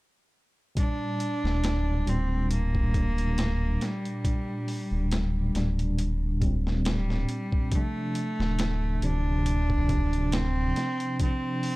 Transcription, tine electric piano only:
0.75 A#2 G3
0.79 D4
2.07 A#2 G3 D4
2.93 A#2 G3
2.97 D4
4.25 A#2 G3 D4
5.55 A#2 G3 D4
6.40 A#2 G3
6.45 C4
7.71 C3 F3
7.75 D4
9.02 C3 F3 D4
9.88 C3 F3
9.92 D4
11.19 C3 F3 D4

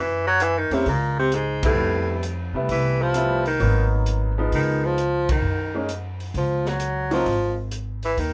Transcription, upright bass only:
Already playing: F#2
0.70 E2
0.86 C#2
1.76 F2
2.53 C3
2.69 C2
3.60 G#1
4.52 C#2
5.42 F#2
6.34 C#2
7.26 G#1
8.17 D#2

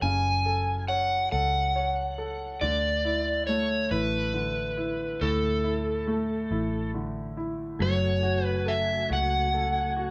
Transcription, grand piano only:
Already playing: A4 C#5
0.03 C#3
0.46 A4
0.89 C#5
1.32 A4
1.76 C#5
2.18 A4
2.62 D3
3.05 E4
3.49 A3
3.91 E4
4.34 D3
4.77 E4
5.21 A2
5.64 E4
6.07 A3
6.51 E4
6.94 D3
7.37 E4
7.80 F#3
8.23 F#4
8.66 A4
9.10 F#4
9.54 A4
9.97 F#4

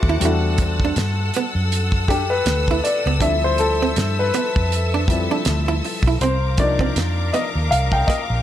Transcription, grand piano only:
Already playing: A3 D4 F#4 C5 D5 E5
0.20 G3 A3 D4 F#4
2.09 G4
2.30 B4
2.84 D5
3.19 F3 G3 C4 E4 E5
3.44 C5
3.59 A4
4.19 B4
5.07 F3 G3 C4 E4
6.22 C5
6.58 F3 A#3 D4 D#4 D5
7.33 D#5
7.71 F5
7.93 G5
8.07 D#5

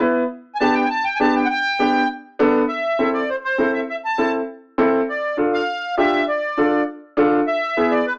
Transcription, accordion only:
0.55 G#5
0.60 A5
0.74 G5
0.86 G#5
0.90 A5
1.05 G5
1.16 G#5
1.20 A5
1.36 G5
1.45 F#5
1.50 G5
2.69 E5
3.14 D5
3.29 C5
3.44 C5
3.74 E5
3.90 E5
4.05 A5
5.10 D5
5.54 F5
5.97 E5
6.28 D5
7.47 E5
7.91 D5
8.06 B4

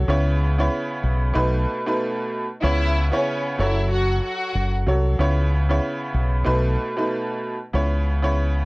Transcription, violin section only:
2.63 E4 E5
3.13 C#4 C#5
3.60 E4 E5
3.92 F#4 F#5
4.24 F#4 F#5

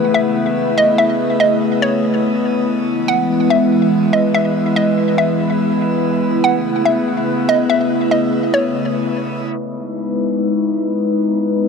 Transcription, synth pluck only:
Already playing: F#5
0.14 E5
0.78 D#5
0.98 E5
1.40 D#5
1.82 C#5
3.08 F#5
3.50 E5
4.13 D#5
4.34 E5
4.76 D#5
5.18 E5
6.44 F#5
6.85 E5
7.49 D#5
7.70 E5
8.11 D#5
8.54 C#5

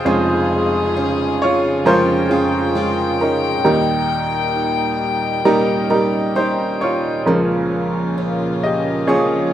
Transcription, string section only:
Already playing: G#3 F4
0.06 F2 C#3 G#4
1.87 G5
3.65 A#2 G3 D#4
5.45 C#4
7.27 A#2 A#3 F4

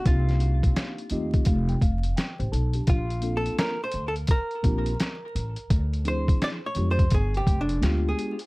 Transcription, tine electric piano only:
0.05 A#3 C4 D4 D#4 G4
1.11 A3 C4 D#4 F4 G4 D#5
1.47 F5
1.69 G5
1.82 F5
2.17 G5
2.39 G4 C5
2.52 D#4 A4 A5
2.75 D4 G4
3.21 A#3 C4 D4 F4 A4
4.63 A#3 C4 D4 F4 G4
6.04 F3 C4 D4 E4 G#4
6.75 G#3 B3 D4 F4 G4
7.81 G#3 B3 D4 F4 G4

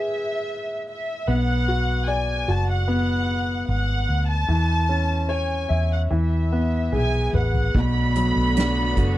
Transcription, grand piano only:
Already playing: G#3 E4 G#4 B4
1.28 B3
1.68 F#4
2.08 D5
2.48 F#4
2.88 B3
4.49 E3
4.89 C#4
5.29 C#5
5.69 E5
6.10 E3
6.52 B3
6.92 G#4
7.34 B4
7.75 B2
8.16 F#3
8.57 D4
8.97 F#4

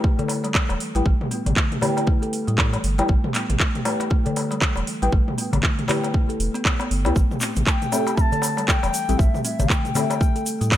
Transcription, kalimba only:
0.04 A3
0.19 A4
0.45 G3
0.70 E3
0.95 G3
1.06 A3
1.31 B3
1.56 A3
1.81 A3
2.07 A3
2.22 A4
2.47 G3
2.73 E3
2.98 G3
3.08 A3
3.34 B3
3.59 A3
3.85 A3
4.10 A3
4.26 A4
4.51 G3
4.77 E3
5.02 G3
5.12 A3
5.38 B3
5.63 A3
5.88 A3
6.14 A3
6.29 A4
6.54 B3
6.80 B3
7.05 B3
7.16 A3
7.41 C4
7.67 A3
7.92 A3
8.17 A3
8.33 A4
8.58 G3
8.83 E3
9.09 G3
9.19 A3
9.44 C4
9.70 A3
9.95 A3
10.21 A3
10.36 A4
10.61 G3

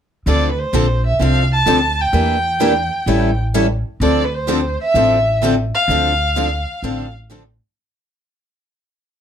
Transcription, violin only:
0.28 D5
0.51 B4
0.59 C5
1.06 E5
1.23 F5
1.53 A5
2.01 G5
4.03 D5
4.24 B4
4.34 C5
4.81 E5
5.74 F5

